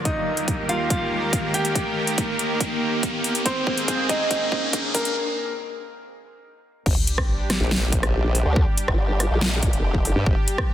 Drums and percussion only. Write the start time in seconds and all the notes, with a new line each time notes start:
0.05 kick, closed hi-hat
0.37 closed hi-hat
0.48 kick, closed hi-hat
0.69 closed hi-hat
0.90 kick, closed hi-hat
1.33 kick, closed hi-hat
1.54 open hi-hat
1.65 closed hi-hat
1.75 kick, closed hi-hat
2.07 closed hi-hat
2.18 kick, closed hi-hat
2.39 closed hi-hat
2.60 kick, closed hi-hat
3.03 kick, closed hi-hat
3.24 open hi-hat
3.35 closed hi-hat
3.46 kick, closed hi-hat
3.67 kick
3.78 closed hi-hat
3.88 kick, closed hi-hat
4.09 kick, closed hi-hat
4.31 kick, closed hi-hat
4.52 kick
4.73 kick, closed hi-hat
4.95 kick, open hi-hat
5.05 closed hi-hat
6.86 kick, crash
7.07 closed hi-hat
7.18 kick, cross-stick
7.50 cross-stick, snare, closed hi-hat
7.71 snare
7.92 kick, closed hi-hat
8.03 cross-stick, closed hi-hat
8.35 open hi-hat
8.56 kick
8.78 closed hi-hat
8.88 kick, cross-stick
9.20 cross-stick, closed hi-hat
9.41 snare
9.63 kick, closed hi-hat
9.73 closed hi-hat
9.95 kick
10.05 open hi-hat
10.26 kick
10.48 closed hi-hat
10.58 kick, cross-stick